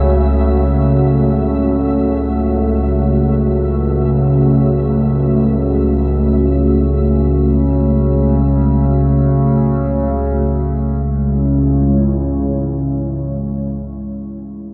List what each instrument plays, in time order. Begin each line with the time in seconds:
Already playing: synth drone C#2 C#3, ambient pad A3 F#4 C#5, synth texture E5
10.41 synth drone C#2 C#3, ambient pad G#3
10.62 ambient pad E4
10.80 ambient pad C#5